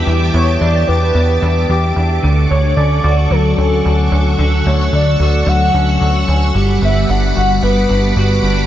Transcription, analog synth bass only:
\new Staff \with { instrumentName = "Analog synth bass" } { \clef bass \time 4/4 \key d \major \tempo 4 = 111 e,8 e,8 e,8 e,8 e,8 e,8 e,8 e,8 | d,8 d,8 d,8 d,8 d,8 d,8 d,8 d,8 | d,8 d,8 d,8 d,8 d,8 d,8 d,8 d,8 | g,,8 g,,8 g,,8 g,,8 g,,8 g,,8 g,,8 g,,8 | }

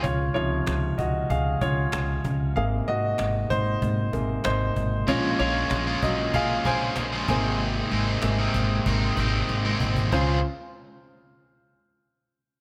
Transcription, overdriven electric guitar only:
\new Staff \with { instrumentName = "Overdriven electric guitar" } { \time 4/4 \key des \major \tempo 4 = 95 r1 | r1 | <bes, f aes des' f' bes'>8 <aes des' f' bes'>8. <aes des' f' bes'>8. <aes des' f' bes'>8 <aes des' f' bes'>8. <bes, f aes des' f' bes'>16 <aes, ees aes c' ees' bes'>8~ | <aes, ees aes c' ees' bes'>8 <aes c' ees' bes'>8. <aes c' ees' bes'>8. <aes c' ees' bes'>8 <aes c' ees' bes'>8. <aes, ees aes c' ees' bes'>8. |
<des aes c' f' aes'>8 r2. r8 | }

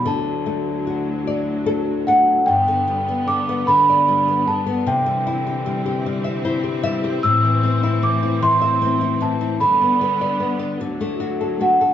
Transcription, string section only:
\new Staff \with { instrumentName = "String section" } { \clef bass \time 6/8 \key g \major \tempo 4. = 50 << { fis2. | b2. | c'2.~ | c'2. |
b4. fis4. | } \\ { <d, a,>2. | <g, d>2. | e2. | <a, e>2. |
<d g>4. <d, a,>4. | } >> }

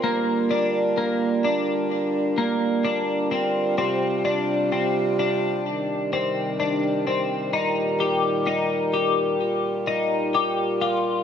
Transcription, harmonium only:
<<
  \new Staff \with { instrumentName = "Harmonium" } { \time 4/4 \key f \mixolydian \tempo 4 = 64 << { bes'1 | g'1~ | g'1 | } \\ { f'1~ | f'2 ees2~ | ees2 f'2 | } >> }
  \new Staff \with { instrumentName = "Harmonium" } { \clef bass \time 4/4 \key f \mixolydian << { g1~ | g1~ | g1 | } \\ { d1 | c1 | bes,1 | } >> }
>>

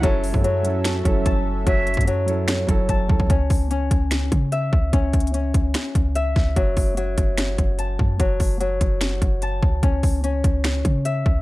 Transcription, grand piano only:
\new Staff \with { instrumentName = "Grand piano" } { \time 4/4 \key cis \minor \tempo 4 = 147 <fis cis' e' a'>8 r16 <fis cis' e' a'>8 r16 <fis cis' e' a'>8 r8 <fis cis' e' a'>4~ <fis cis' e' a'>16 r16 | r4. <fis cis' e' a'>8 r8 <fis cis' e' a'>8 r8 <fis cis' e' a'>16 r16 | r1 | r1 |
r1 | r1 | r1 | }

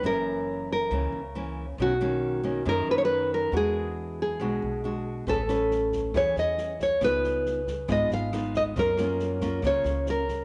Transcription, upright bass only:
\new Staff \with { instrumentName = "Upright bass" } { \clef bass \time 4/4 \key fis \mixolydian \tempo 4 = 138 fis,,2 cis,8 cis,4. | b,,2 fis,8 fis,4. | e,2 b,,8 b,,4. | a,,2 e,8 e,4. |
cis,2 gis,,8 gis,,4. | fis,2 cis,8 cis,4. | }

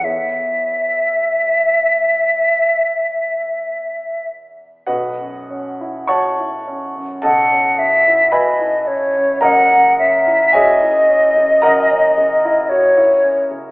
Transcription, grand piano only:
\new Staff \with { instrumentName = "Grand piano" } { \time 4/4 \key b \major \tempo 4 = 53 << { r1 | <fis' b' dis'' fis''>4 <cis'' fis'' a'' cis'''>4 <a' dis'' fis'' a''>4 <b' e'' gis'' b''>4 | <ais' dis'' fis'' ais''>4 <gis' cis'' e'' gis''>4 <ais' dis'' fis'' ais''>4. r8 | } \\ { <e, b e' gis' cis''>1 | b,,16 fis,16 cis'16 e'16 fis'16 e'16 cis'16 fis,16 b,,16 cis'16 fis,16 e'16 fis'16 e'16 cis'16 fis,16 | <fis,, fis,>16 cis16 cis'16 e'16 fis'16 e'16 cis'16 cis16 fis,16 cis'16 cis16 e'16 fis'16 e'16 cis'16 cis16 | } >> }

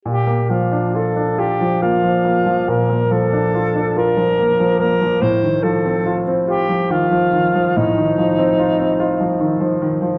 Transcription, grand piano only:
\new Staff \with { instrumentName = "Grand piano" } { \clef bass \time 12/8 \key bes \major \tempo 4. = 47 bes,16 bes16 f16 d'16 f'16 d'16 f'16 f16 bes16 f16 bes16 f16 bes,16 bes16 f16 d'16 f'16 d'16 f'16 f16 bes16 f16 bes16 f16 | a,16 ees16 f16 c'16 f'16 c'16 f'16 f16 ees16 f16 ees16 f16 a,16 ees16 f16 c'16 f'16 c'16 f'16 f16 ees16 f16 ees16 f16 | }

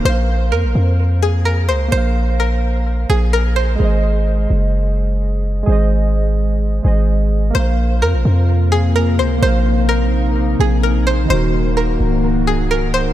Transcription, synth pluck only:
\new Staff \with { instrumentName = "Synth pluck" } { \time 4/4 \key aes \mixolydian \tempo 4 = 128 c''4 bes'4 r8 aes'8 bes'8 c''8 | c''4 bes'4 r8 aes'8 bes'8 c''8 | r1 | r1 |
c''4 bes'4 r8 aes'8 bes'8 c''8 | c''4 bes'4 r8 aes'8 bes'8 c''8 | c''4 bes'4 r8 aes'8 bes'8 c''8 | }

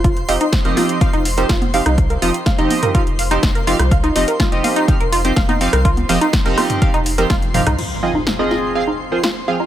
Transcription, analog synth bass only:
\new Staff \with { instrumentName = "Analog synth bass" } { \clef bass \time 4/4 \key c \phrygian \tempo 4 = 124 f,,8 f,,16 r8 f,,16 r8. f,,8. f,,8. c,16~ | c,8 f,,16 r8 f,,16 r8. f,,8. f,,8. c,16~ | c,8 f,,16 r8 f,,16 r8. f,,8. f,,8. c,16~ | c,8 f,,16 r8 f,,16 r8. f,,8. f,,8. c,16 |
r1 | }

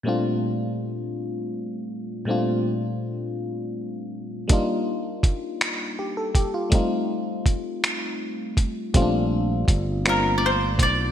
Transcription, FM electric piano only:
\new Staff \with { instrumentName = "FM electric piano" } { \time 6/8 \key bes \major \tempo 4. = 54 << { r2. | r2. | r2 g'16 a'16 g'16 f'16~ | f'16 r2 r8. |
r2. | } \\ { <bes, g a c' d' f'>2. | <bes, g a c' d' f'>2. | <g bes d' ees' f'>2. | <g a c' ees' f'>2. |
<g a c' des' d' f'>4 r8 <g bes c' d' f'>4 r8 | } >> }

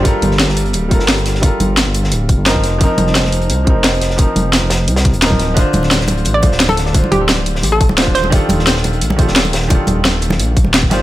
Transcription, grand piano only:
\new Staff \with { instrumentName = "Grand piano" } { \time 4/4 \key g \minor \tempo 4 = 174 <g f' a' bes'>2~ <g f' a' bes'>8 <g f' a' bes'>4. | <g f' a' bes'>2. <f c' ees' bes'>4 | <f c' ees' bes'>2~ <f c' ees' bes'>8 <f c' ees' bes'>4. | <f c' ees' bes'>2. <f c' ees' bes'>4 |
<d d' f' c''>2~ <d d' f' c''>8 <d d' f' c''>4. | <d d' f' c''>2. <d d' f' c''>4 | <ees d' f' g' a'>2~ <ees d' f' g' a'>8 <ees d' f' g' a'>4. | <ees d' f' g' a'>2. r8 <ees d' f' g' c''>8 | }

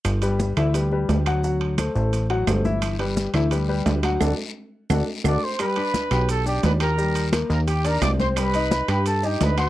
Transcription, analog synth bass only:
\new Staff \with { instrumentName = "Analog synth bass" } { \clef bass \time 4/4 \key g \major \tempo 4 = 173 g,,4. d,4. d,4~ | d,4. a,,4. g,,4~ | g,,4. d,4. d,4 | d,8 r4. d,8 r8 d,8 r8 |
r4. b,,4. ees,4~ | ees,4. ees,4. c,4~ | c,4. g,4. d,4 | }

